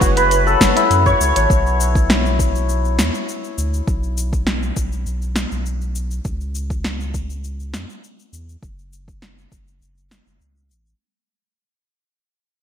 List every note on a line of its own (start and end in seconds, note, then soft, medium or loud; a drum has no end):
0.00 0.56 F#1 loud
0.00 0.76 E4 medium
0.00 3.26 F#4 medium
0.00 0.53 G#4 medium
0.00 0.17 B4 medium
0.00 1.06 C#5 medium
0.00 kick medium
0.00 cabasa medium
0.17 2.90 B4 loud
0.17 closed hi-hat medium
0.17 cabasa soft
0.31 closed hi-hat soft
0.31 cabasa soft
0.47 3.39 A4 medium
0.47 cabasa soft
0.61 0.73 F#1 loud
0.61 kick medium
0.61 snare medium
0.61 cabasa medium
0.76 4.24 E4 medium
0.76 closed hi-hat medium
0.76 cabasa soft
0.90 1.14 F#2 medium
0.90 closed hi-hat soft
0.90 cabasa soft
1.06 1.36 C#5 loud
1.06 kick medium
1.06 cabasa soft
1.20 1.33 C#2 medium
1.20 cabasa medium
1.36 1.47 A1 loud
1.36 3.91 C#5 medium
1.36 closed hi-hat medium
1.36 cabasa soft
1.50 3.00 B1 medium
1.50 kick loud
1.50 cabasa soft
1.67 cabasa soft
1.80 cabasa medium
1.95 kick loud
1.95 cabasa soft
2.10 snare medium
2.10 cabasa soft
2.26 cabasa soft
2.39 kick medium
2.39 cabasa medium
2.55 cabasa soft
2.69 cabasa soft
2.85 cabasa soft
2.98 3.11 E2 medium
2.98 snare medium
2.98 cabasa medium
3.15 cabasa soft
3.29 cabasa soft
3.44 cabasa soft
3.58 3.81 D2 loud
3.58 cabasa medium
3.74 cabasa soft
3.87 4.72 B1 medium
3.87 kick loud
3.87 cabasa soft
4.03 cabasa soft
4.17 cabasa medium
4.33 kick loud
4.33 cabasa soft
4.47 snare medium
4.47 cabasa soft
4.63 cabasa soft
4.76 5.06 B1 medium
4.76 kick medium
4.76 cabasa medium
4.92 cabasa soft
5.06 5.46 B1 medium
5.06 cabasa soft
5.22 cabasa soft
5.36 snare medium
5.36 cabasa medium
5.52 6.20 B1 loud
5.52 cabasa soft
5.66 cabasa soft
5.81 cabasa soft
5.95 cabasa medium
6.11 cabasa soft
6.25 7.75 C#2 loud
6.25 kick loud
6.25 cabasa soft
6.41 cabasa soft
6.55 cabasa medium
6.70 kick loud
6.70 cabasa soft
6.84 snare medium
6.84 cabasa soft
7.00 cabasa soft
7.14 kick medium
7.14 cabasa medium
7.30 cabasa soft
7.44 cabasa soft
7.60 cabasa soft
7.73 7.86 F#2 medium
7.73 snare medium
7.73 cabasa medium
7.90 cabasa soft
8.04 cabasa soft
8.19 cabasa soft
8.33 8.57 E2 medium
8.33 cabasa medium
8.49 cabasa soft
8.62 9.47 F#1 medium
8.62 kick loud
8.62 cabasa soft
8.79 cabasa soft
8.93 cabasa medium
9.08 kick loud
9.08 cabasa soft
9.22 snare medium
9.22 cabasa soft
9.38 cabasa soft
9.52 9.80 F#1 medium
9.52 kick medium
9.52 cabasa medium
9.68 cabasa soft
9.81 10.21 F#1 medium
9.81 cabasa soft
9.98 cabasa soft
10.11 snare medium
10.11 cabasa medium
10.26 10.40 F#1 medium
10.26 cabasa soft
10.40 10.72 C#2 medium
10.40 cabasa soft
10.57 cabasa soft
10.70 10.94 A1 medium
10.70 cabasa medium
10.87 cabasa soft